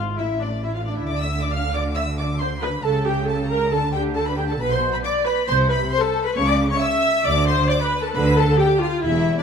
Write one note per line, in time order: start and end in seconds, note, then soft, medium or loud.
0.00 0.16 G#1 medium
0.00 0.16 G#2 medium
0.00 0.17 F4 medium
0.17 1.07 A1 medium
0.17 1.07 A2 medium
0.17 0.40 E4 medium
0.17 0.39 E5 medium
0.17 0.27 E5 medium
0.40 0.48 D4 medium
0.40 0.63 D5 medium
0.40 0.62 D5 medium
0.63 0.74 E4 medium
0.63 0.74 E5 medium
0.74 0.79 F4 medium
0.74 0.85 F5 medium
0.74 0.85 F5 soft
0.85 0.96 D4 medium
0.85 0.96 D5 medium
0.96 1.08 E4 medium
0.96 1.07 E5 soft
0.96 1.08 E5 soft
1.07 2.81 D2 medium
1.07 2.81 D3 medium
1.07 1.18 D5 medium
1.07 1.18 D6 medium
1.17 1.41 E5 medium
1.17 1.40 E6 medium
1.40 1.52 D5 medium
1.40 1.51 D6 medium
1.50 1.74 F5 medium
1.50 1.73 F6 medium
1.73 1.82 D5 medium
1.73 1.81 D6 medium
1.73 1.96 D6 medium
1.95 2.05 E5 medium
1.95 2.03 E6 medium
1.95 2.17 E6 medium
2.17 2.27 D5 medium
2.17 2.25 D6 medium
2.17 2.40 D6 medium
2.40 2.49 C5 medium
2.40 2.48 C6 medium
2.40 2.63 C6 medium
2.61 2.71 B4 medium
2.61 2.83 B5 medium
2.61 2.85 B5 medium
2.84 3.71 C#2 medium
2.84 3.70 C#3 medium
2.84 3.06 A4 medium
2.84 3.06 A5 medium
2.84 3.07 A5 medium
3.05 3.29 G4 medium
3.05 3.27 G5 medium
3.05 3.28 G5 medium
3.27 3.50 A4 medium
3.27 3.49 A5 medium
3.27 3.37 A5 medium
3.49 3.72 A#4 medium
3.49 3.72 A#5 medium
3.71 4.61 D2 medium
3.71 4.61 D3 medium
3.71 3.80 A4 medium
3.71 3.93 A5 medium
3.71 3.94 A5 medium
3.93 4.16 G4 medium
3.93 4.01 G5 medium
3.93 4.02 G5 medium
4.15 4.27 A4 medium
4.15 4.20 A5 medium
4.15 4.27 A5 medium
4.26 4.38 B4 medium
4.26 4.38 B5 medium
4.37 4.43 G4 medium
4.37 4.42 G5 medium
4.37 4.49 G5 medium
4.48 4.56 A4 medium
4.48 4.60 A5 medium
4.59 4.97 B1 medium
4.59 4.97 B2 medium
4.59 4.72 B4 medium
4.59 4.71 B5 medium
4.70 4.94 C5 medium
4.70 4.93 C6 medium
4.70 4.79 C6 medium
4.92 5.05 B4 medium
4.92 4.96 B5 medium
4.92 4.97 B5 medium
5.03 5.26 D5 loud
5.03 5.11 D6 medium
5.03 5.12 D6 medium
5.25 5.48 B4 loud
5.25 5.33 B5 medium
5.25 5.48 B5 medium
5.47 5.85 C2 medium
5.47 5.85 C3 medium
5.47 5.70 C5 loud
5.47 5.55 C6 loud
5.47 5.56 C6 medium
5.70 5.78 B4 medium
5.70 5.91 B5 medium
5.70 5.92 B5 medium
5.91 6.03 C5 medium
5.91 6.03 C6 medium
6.02 6.26 A4 medium
6.02 6.25 A5 medium
6.02 6.24 A5 medium
6.24 6.37 B4 medium
6.24 6.36 B5 medium
6.35 6.74 C#2 medium
6.35 6.73 C#3 loud
6.35 6.47 C#5 loud
6.35 6.47 C#6 medium
6.46 6.56 D5 loud
6.46 6.54 D6 medium
6.46 6.70 D6 medium
6.70 6.82 C#5 medium
6.70 6.81 C#6 medium
6.81 7.25 E5 loud
6.81 7.25 E6 medium
6.81 7.26 E6 medium
7.25 7.63 D2 medium
7.25 7.62 D3 medium
7.25 7.48 D5 loud
7.25 7.47 D6 loud
7.48 7.70 C5 loud
7.48 7.56 C6 medium
7.48 7.69 C6 medium
7.70 7.81 D5 loud
7.70 7.81 D6 loud
7.70 7.75 D6 medium
7.81 8.04 B4 medium
7.81 8.03 B5 medium
7.81 8.04 B5 medium
8.03 8.15 A4 medium
8.03 8.15 A5 medium
8.03 8.08 A5 medium
8.15 8.53 D2 medium
8.15 8.52 D3 loud
8.15 8.37 B4 loud
8.15 8.23 B5 loud
8.15 8.37 B5 loud
8.37 8.60 A4 loud
8.37 8.59 A5 medium
8.37 8.60 A5 medium
8.59 8.82 G4 loud
8.59 8.67 G5 medium
8.59 8.81 G5 medium
8.82 9.05 F4 loud
8.82 9.04 F5 medium
8.82 8.90 F5 medium
9.04 9.42 E1 medium
9.04 9.43 E2 medium
9.04 9.38 E4 medium
9.04 9.38 E5 medium
9.38 9.43 D5 medium